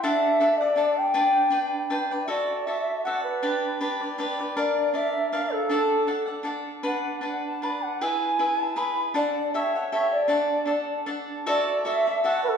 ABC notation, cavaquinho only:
X:1
M:3/4
L:1/8
Q:"Swing" 1/4=157
K:G
V:1 name="Cavaquinho"
[DAdf]2 [DAdf] [Adf] [DAdf]2 | [DBdg]2 [DBdg]2 [DBdg] [Bdg] | [K:D] [FAde]2 [FAde]2 [FAde]2 | [DGBd]2 [DGBd] [GBd] [DGBd] [GBd] |
[D_Bd=f]2 [DBd]2 [DBdf]2 | [DAdf]2 [DAdf] [Adf] [DAdf]2 | [DBdf]2 [DBdf]2 [DBdf]2 | [E^GBe]2 [EGBe]2 [EGBe]2 |
[DAdf]2 [GAce] [Ace] [GAce]2 | [DAdf]2 [DAdf]2 [DAdf]2 | [FAde]2 [FAde] [Ade] [FAde]2 |]